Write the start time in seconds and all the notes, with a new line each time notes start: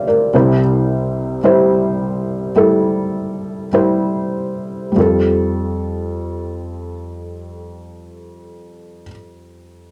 Already playing: D2 D3 G3 F4 A#4 C5 D5 E5 F5
0.07 A#4 D5
0.33 C2 C3 G3 E4 C5
1.43 G3 E4 C5
2.55 G3 E4 A4
3.73 G3 E4 C5
4.92 G3
4.96 F2 F4 A4